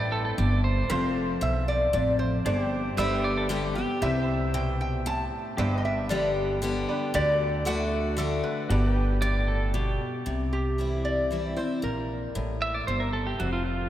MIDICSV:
0, 0, Header, 1, 7, 480
1, 0, Start_track
1, 0, Tempo, 521286
1, 824, Time_signature, 3, 2, 24, 8
1, 12790, End_track
2, 0, Start_track
2, 0, Title_t, "Resonator guitar played with a steel bar"
2, 0, Program_c, 0, 25
2, 834, Note_on_c, 0, 72, 99
2, 1275, Note_off_c, 0, 72, 0
2, 1311, Note_on_c, 0, 76, 98
2, 1548, Note_on_c, 0, 74, 92
2, 1554, Note_off_c, 0, 76, 0
2, 1769, Note_off_c, 0, 74, 0
2, 1783, Note_on_c, 0, 74, 88
2, 2006, Note_off_c, 0, 74, 0
2, 2017, Note_on_c, 0, 72, 78
2, 2702, Note_off_c, 0, 72, 0
2, 3705, Note_on_c, 0, 76, 93
2, 4183, Note_on_c, 0, 79, 96
2, 4196, Note_off_c, 0, 76, 0
2, 4404, Note_off_c, 0, 79, 0
2, 4426, Note_on_c, 0, 79, 97
2, 4664, Note_off_c, 0, 79, 0
2, 4668, Note_on_c, 0, 81, 105
2, 5109, Note_off_c, 0, 81, 0
2, 5148, Note_on_c, 0, 79, 110
2, 5319, Note_on_c, 0, 75, 77
2, 5327, Note_off_c, 0, 79, 0
2, 5378, Note_off_c, 0, 75, 0
2, 5386, Note_on_c, 0, 76, 91
2, 5604, Note_off_c, 0, 76, 0
2, 5618, Note_on_c, 0, 74, 74
2, 6063, Note_off_c, 0, 74, 0
2, 6583, Note_on_c, 0, 74, 109
2, 7056, Note_on_c, 0, 78, 100
2, 7072, Note_off_c, 0, 74, 0
2, 7500, Note_off_c, 0, 78, 0
2, 7530, Note_on_c, 0, 69, 82
2, 7754, Note_off_c, 0, 69, 0
2, 7768, Note_on_c, 0, 71, 87
2, 9173, Note_off_c, 0, 71, 0
2, 9693, Note_on_c, 0, 67, 75
2, 10173, Note_on_c, 0, 74, 89
2, 10188, Note_off_c, 0, 67, 0
2, 10620, Note_off_c, 0, 74, 0
2, 10653, Note_on_c, 0, 72, 83
2, 10877, Note_off_c, 0, 72, 0
2, 10897, Note_on_c, 0, 70, 75
2, 11581, Note_off_c, 0, 70, 0
2, 12790, End_track
3, 0, Start_track
3, 0, Title_t, "Pedal steel guitar"
3, 0, Program_c, 1, 26
3, 0, Note_on_c, 1, 71, 69
3, 0, Note_on_c, 1, 74, 64
3, 0, Note_on_c, 1, 79, 73
3, 814, Note_off_c, 1, 71, 0
3, 817, Note_off_c, 1, 74, 0
3, 823, Note_off_c, 1, 79, 0
3, 828, Note_on_c, 1, 71, 67
3, 838, Note_on_c, 1, 72, 78
3, 849, Note_on_c, 1, 77, 70
3, 1058, Note_off_c, 1, 71, 0
3, 1058, Note_on_c, 1, 69, 67
3, 2250, Note_off_c, 1, 69, 0
3, 2255, Note_off_c, 1, 72, 0
3, 2260, Note_off_c, 1, 77, 0
3, 2262, Note_on_c, 1, 67, 73
3, 2267, Note_on_c, 1, 72, 73
3, 2279, Note_on_c, 1, 74, 71
3, 2728, Note_off_c, 1, 67, 0
3, 2739, Note_off_c, 1, 72, 0
3, 2739, Note_on_c, 1, 67, 82
3, 2745, Note_off_c, 1, 74, 0
3, 2748, Note_on_c, 1, 72, 79
3, 2755, Note_on_c, 1, 74, 74
3, 2933, Note_off_c, 1, 72, 0
3, 2933, Note_on_c, 1, 71, 79
3, 3689, Note_off_c, 1, 67, 0
3, 3694, Note_off_c, 1, 71, 0
3, 3697, Note_off_c, 1, 74, 0
3, 3699, Note_on_c, 1, 67, 69
3, 3711, Note_on_c, 1, 71, 67
3, 3717, Note_on_c, 1, 76, 73
3, 3896, Note_off_c, 1, 71, 0
3, 3896, Note_on_c, 1, 72, 67
3, 5122, Note_off_c, 1, 67, 0
3, 5128, Note_off_c, 1, 72, 0
3, 5131, Note_off_c, 1, 76, 0
3, 5132, Note_on_c, 1, 67, 72
3, 5139, Note_on_c, 1, 72, 70
3, 5152, Note_on_c, 1, 76, 69
3, 5323, Note_off_c, 1, 72, 0
3, 5323, Note_on_c, 1, 71, 70
3, 5382, Note_off_c, 1, 76, 0
3, 5382, Note_on_c, 1, 74, 69
3, 6557, Note_off_c, 1, 67, 0
3, 6561, Note_off_c, 1, 71, 0
3, 6567, Note_off_c, 1, 74, 0
3, 6582, Note_on_c, 1, 67, 66
3, 6586, Note_on_c, 1, 71, 75
3, 6597, Note_on_c, 1, 74, 69
3, 6766, Note_off_c, 1, 67, 0
3, 6766, Note_on_c, 1, 66, 66
3, 6816, Note_off_c, 1, 71, 0
3, 6816, Note_on_c, 1, 69, 75
3, 8001, Note_off_c, 1, 66, 0
3, 8003, Note_off_c, 1, 69, 0
3, 8006, Note_on_c, 1, 66, 73
3, 8009, Note_off_c, 1, 74, 0
3, 8018, Note_on_c, 1, 69, 71
3, 8029, Note_on_c, 1, 74, 68
3, 8191, Note_off_c, 1, 66, 0
3, 8191, Note_on_c, 1, 67, 73
3, 8248, Note_off_c, 1, 69, 0
3, 8248, Note_on_c, 1, 71, 71
3, 9435, Note_off_c, 1, 67, 0
3, 9441, Note_off_c, 1, 71, 0
3, 9446, Note_off_c, 1, 74, 0
3, 12790, End_track
4, 0, Start_track
4, 0, Title_t, "Pedal steel guitar"
4, 0, Program_c, 2, 26
4, 0, Note_on_c, 2, 74, 84
4, 105, Note_off_c, 2, 74, 0
4, 111, Note_on_c, 2, 69, 98
4, 220, Note_off_c, 2, 69, 0
4, 231, Note_on_c, 2, 69, 75
4, 344, Note_off_c, 2, 69, 0
4, 352, Note_on_c, 2, 74, 78
4, 581, Note_off_c, 2, 74, 0
4, 590, Note_on_c, 2, 72, 107
4, 820, Note_off_c, 2, 72, 0
4, 2747, Note_on_c, 2, 76, 92
4, 2976, Note_off_c, 2, 76, 0
4, 2986, Note_on_c, 2, 74, 89
4, 3100, Note_off_c, 2, 74, 0
4, 3108, Note_on_c, 2, 69, 73
4, 3221, Note_off_c, 2, 69, 0
4, 3222, Note_on_c, 2, 67, 89
4, 3452, Note_off_c, 2, 67, 0
4, 3463, Note_on_c, 2, 67, 97
4, 3694, Note_off_c, 2, 67, 0
4, 8487, Note_on_c, 2, 74, 101
4, 8722, Note_off_c, 2, 74, 0
4, 8730, Note_on_c, 2, 69, 92
4, 8964, Note_off_c, 2, 69, 0
4, 8979, Note_on_c, 2, 67, 93
4, 9325, Note_off_c, 2, 67, 0
4, 11619, Note_on_c, 2, 76, 86
4, 11734, Note_off_c, 2, 76, 0
4, 11735, Note_on_c, 2, 74, 62
4, 11850, Note_off_c, 2, 74, 0
4, 11853, Note_on_c, 2, 72, 73
4, 11971, Note_on_c, 2, 70, 62
4, 11972, Note_off_c, 2, 72, 0
4, 12089, Note_off_c, 2, 70, 0
4, 12093, Note_on_c, 2, 69, 83
4, 12212, Note_off_c, 2, 69, 0
4, 12216, Note_on_c, 2, 67, 78
4, 12334, Note_off_c, 2, 67, 0
4, 12336, Note_on_c, 2, 66, 81
4, 12451, Note_off_c, 2, 66, 0
4, 12455, Note_on_c, 2, 65, 72
4, 12565, Note_off_c, 2, 65, 0
4, 12576, Note_on_c, 2, 65, 78
4, 12790, Note_off_c, 2, 65, 0
4, 12790, End_track
5, 0, Start_track
5, 0, Title_t, "Honky-tonk piano"
5, 0, Program_c, 3, 3
5, 0, Note_on_c, 3, 59, 66
5, 0, Note_on_c, 3, 62, 53
5, 0, Note_on_c, 3, 67, 57
5, 0, Note_on_c, 3, 71, 69
5, 798, Note_off_c, 3, 59, 0
5, 798, Note_off_c, 3, 62, 0
5, 798, Note_off_c, 3, 67, 0
5, 798, Note_off_c, 3, 71, 0
5, 828, Note_on_c, 3, 65, 61
5, 829, Note_on_c, 3, 60, 67
5, 830, Note_on_c, 3, 69, 58
5, 830, Note_on_c, 3, 72, 71
5, 2236, Note_off_c, 3, 60, 0
5, 2236, Note_off_c, 3, 65, 0
5, 2236, Note_off_c, 3, 69, 0
5, 2236, Note_off_c, 3, 72, 0
5, 2263, Note_on_c, 3, 72, 57
5, 2265, Note_on_c, 3, 74, 67
5, 2266, Note_on_c, 3, 62, 61
5, 2266, Note_on_c, 3, 67, 59
5, 2730, Note_off_c, 3, 67, 0
5, 2731, Note_off_c, 3, 62, 0
5, 2731, Note_off_c, 3, 74, 0
5, 2742, Note_off_c, 3, 72, 0
5, 2742, Note_on_c, 3, 71, 68
5, 2744, Note_on_c, 3, 67, 73
5, 2745, Note_on_c, 3, 62, 77
5, 2745, Note_on_c, 3, 74, 86
5, 3681, Note_off_c, 3, 71, 0
5, 3682, Note_off_c, 3, 62, 0
5, 3682, Note_off_c, 3, 67, 0
5, 3682, Note_off_c, 3, 74, 0
5, 3705, Note_on_c, 3, 72, 58
5, 3707, Note_on_c, 3, 64, 61
5, 3707, Note_on_c, 3, 76, 69
5, 3708, Note_on_c, 3, 67, 54
5, 5111, Note_off_c, 3, 72, 0
5, 5112, Note_off_c, 3, 64, 0
5, 5112, Note_off_c, 3, 76, 0
5, 5113, Note_off_c, 3, 67, 0
5, 5141, Note_on_c, 3, 62, 62
5, 5141, Note_on_c, 3, 71, 63
5, 5142, Note_on_c, 3, 74, 69
5, 5143, Note_on_c, 3, 67, 55
5, 6313, Note_off_c, 3, 62, 0
5, 6313, Note_off_c, 3, 67, 0
5, 6313, Note_off_c, 3, 71, 0
5, 6313, Note_off_c, 3, 74, 0
5, 6340, Note_on_c, 3, 62, 64
5, 6342, Note_on_c, 3, 67, 61
5, 6342, Note_on_c, 3, 71, 55
5, 6343, Note_on_c, 3, 74, 75
5, 6565, Note_off_c, 3, 62, 0
5, 6567, Note_off_c, 3, 74, 0
5, 6578, Note_off_c, 3, 67, 0
5, 6578, Note_off_c, 3, 71, 0
5, 6579, Note_on_c, 3, 62, 68
5, 6579, Note_on_c, 3, 66, 55
5, 6579, Note_on_c, 3, 69, 62
5, 6580, Note_on_c, 3, 74, 74
5, 7986, Note_off_c, 3, 62, 0
5, 7986, Note_off_c, 3, 66, 0
5, 7986, Note_off_c, 3, 69, 0
5, 7986, Note_off_c, 3, 74, 0
5, 8019, Note_on_c, 3, 67, 57
5, 8019, Note_on_c, 3, 71, 59
5, 8020, Note_on_c, 3, 62, 66
5, 8020, Note_on_c, 3, 74, 73
5, 9427, Note_off_c, 3, 62, 0
5, 9427, Note_off_c, 3, 67, 0
5, 9427, Note_off_c, 3, 71, 0
5, 9427, Note_off_c, 3, 74, 0
5, 12790, End_track
6, 0, Start_track
6, 0, Title_t, "Steel-string acoustic guitar"
6, 0, Program_c, 4, 25
6, 0, Note_on_c, 4, 43, 91
6, 0, Note_on_c, 4, 45, 91
6, 299, Note_off_c, 4, 43, 0
6, 324, Note_off_c, 4, 45, 0
6, 350, Note_on_c, 4, 43, 85
6, 803, Note_off_c, 4, 43, 0
6, 825, Note_on_c, 4, 41, 95
6, 1296, Note_off_c, 4, 41, 0
6, 1300, Note_on_c, 4, 40, 95
6, 1757, Note_off_c, 4, 40, 0
6, 1779, Note_on_c, 4, 41, 89
6, 2236, Note_off_c, 4, 41, 0
6, 2262, Note_on_c, 4, 43, 95
6, 2738, Note_on_c, 4, 50, 84
6, 2741, Note_off_c, 4, 43, 0
6, 2745, Note_on_c, 4, 55, 99
6, 2754, Note_on_c, 4, 59, 93
6, 2760, Note_on_c, 4, 67, 95
6, 3195, Note_off_c, 4, 50, 0
6, 3198, Note_off_c, 4, 55, 0
6, 3203, Note_off_c, 4, 59, 0
6, 3206, Note_off_c, 4, 67, 0
6, 3214, Note_on_c, 4, 50, 97
6, 3221, Note_on_c, 4, 55, 95
6, 3229, Note_on_c, 4, 59, 95
6, 3236, Note_on_c, 4, 67, 94
6, 3445, Note_off_c, 4, 67, 0
6, 3447, Note_off_c, 4, 50, 0
6, 3451, Note_off_c, 4, 55, 0
6, 3454, Note_off_c, 4, 59, 0
6, 3456, Note_on_c, 4, 67, 61
6, 3482, Note_on_c, 4, 59, 49
6, 3688, Note_off_c, 4, 67, 0
6, 3700, Note_on_c, 4, 48, 92
6, 3701, Note_off_c, 4, 59, 0
6, 4181, Note_on_c, 4, 47, 89
6, 4610, Note_off_c, 4, 48, 0
6, 4635, Note_off_c, 4, 47, 0
6, 4659, Note_on_c, 4, 45, 92
6, 5113, Note_off_c, 4, 45, 0
6, 5140, Note_on_c, 4, 43, 92
6, 5610, Note_on_c, 4, 50, 97
6, 5621, Note_on_c, 4, 55, 92
6, 5627, Note_on_c, 4, 59, 97
6, 5632, Note_on_c, 4, 67, 90
6, 6049, Note_off_c, 4, 43, 0
6, 6068, Note_off_c, 4, 50, 0
6, 6073, Note_off_c, 4, 55, 0
6, 6076, Note_off_c, 4, 59, 0
6, 6079, Note_off_c, 4, 67, 0
6, 6094, Note_on_c, 4, 50, 98
6, 6102, Note_on_c, 4, 55, 95
6, 6110, Note_on_c, 4, 59, 86
6, 6113, Note_on_c, 4, 67, 94
6, 6549, Note_off_c, 4, 50, 0
6, 6553, Note_off_c, 4, 55, 0
6, 6558, Note_off_c, 4, 59, 0
6, 6559, Note_off_c, 4, 67, 0
6, 6573, Note_on_c, 4, 50, 94
6, 7035, Note_off_c, 4, 50, 0
6, 7046, Note_on_c, 4, 50, 90
6, 7052, Note_on_c, 4, 57, 94
6, 7060, Note_on_c, 4, 62, 103
6, 7064, Note_on_c, 4, 66, 106
6, 7505, Note_off_c, 4, 50, 0
6, 7508, Note_off_c, 4, 57, 0
6, 7512, Note_off_c, 4, 62, 0
6, 7514, Note_off_c, 4, 66, 0
6, 7519, Note_on_c, 4, 50, 91
6, 7531, Note_on_c, 4, 57, 92
6, 7536, Note_on_c, 4, 62, 88
6, 7543, Note_on_c, 4, 66, 92
6, 7981, Note_off_c, 4, 50, 0
6, 7987, Note_off_c, 4, 57, 0
6, 7990, Note_off_c, 4, 62, 0
6, 7993, Note_off_c, 4, 66, 0
6, 8015, Note_on_c, 4, 43, 102
6, 8489, Note_on_c, 4, 45, 88
6, 8925, Note_off_c, 4, 43, 0
6, 8946, Note_off_c, 4, 45, 0
6, 8968, Note_on_c, 4, 47, 88
6, 9426, Note_off_c, 4, 47, 0
6, 9446, Note_on_c, 4, 48, 81
6, 9928, Note_on_c, 4, 52, 50
6, 9933, Note_on_c, 4, 55, 55
6, 9942, Note_on_c, 4, 60, 56
6, 9951, Note_on_c, 4, 64, 57
6, 10362, Note_off_c, 4, 48, 0
6, 10387, Note_off_c, 4, 52, 0
6, 10389, Note_off_c, 4, 55, 0
6, 10394, Note_off_c, 4, 60, 0
6, 10398, Note_off_c, 4, 64, 0
6, 10411, Note_on_c, 4, 52, 49
6, 10420, Note_on_c, 4, 55, 57
6, 10423, Note_on_c, 4, 60, 56
6, 10429, Note_on_c, 4, 64, 61
6, 10637, Note_off_c, 4, 64, 0
6, 10643, Note_off_c, 4, 52, 0
6, 10648, Note_off_c, 4, 55, 0
6, 10648, Note_on_c, 4, 64, 61
6, 10649, Note_off_c, 4, 60, 0
6, 10673, Note_on_c, 4, 60, 47
6, 10882, Note_off_c, 4, 64, 0
6, 10886, Note_on_c, 4, 46, 76
6, 10894, Note_off_c, 4, 60, 0
6, 11374, Note_on_c, 4, 45, 84
6, 11805, Note_off_c, 4, 46, 0
6, 11832, Note_off_c, 4, 45, 0
6, 11860, Note_on_c, 4, 43, 71
6, 12316, Note_off_c, 4, 43, 0
6, 12336, Note_on_c, 4, 41, 80
6, 12790, Note_off_c, 4, 41, 0
6, 12790, End_track
7, 0, Start_track
7, 0, Title_t, "Upright bass"
7, 0, Program_c, 5, 32
7, 0, Note_on_c, 5, 33, 81
7, 273, Note_off_c, 5, 33, 0
7, 352, Note_on_c, 5, 31, 93
7, 756, Note_off_c, 5, 31, 0
7, 828, Note_on_c, 5, 29, 87
7, 1212, Note_off_c, 5, 29, 0
7, 1303, Note_on_c, 5, 35, 92
7, 1711, Note_off_c, 5, 35, 0
7, 1785, Note_on_c, 5, 33, 97
7, 2191, Note_off_c, 5, 33, 0
7, 2262, Note_on_c, 5, 31, 85
7, 2647, Note_off_c, 5, 31, 0
7, 2737, Note_on_c, 5, 31, 93
7, 3508, Note_off_c, 5, 31, 0
7, 3699, Note_on_c, 5, 36, 81
7, 4854, Note_off_c, 5, 36, 0
7, 5140, Note_on_c, 5, 31, 90
7, 6293, Note_off_c, 5, 31, 0
7, 6581, Note_on_c, 5, 38, 93
7, 7733, Note_off_c, 5, 38, 0
7, 8012, Note_on_c, 5, 31, 89
7, 9168, Note_off_c, 5, 31, 0
7, 9454, Note_on_c, 5, 36, 66
7, 10612, Note_off_c, 5, 36, 0
7, 10896, Note_on_c, 5, 34, 69
7, 11282, Note_off_c, 5, 34, 0
7, 11376, Note_on_c, 5, 33, 76
7, 11785, Note_off_c, 5, 33, 0
7, 11862, Note_on_c, 5, 31, 80
7, 12269, Note_off_c, 5, 31, 0
7, 12342, Note_on_c, 5, 29, 72
7, 12790, Note_off_c, 5, 29, 0
7, 12790, End_track
0, 0, End_of_file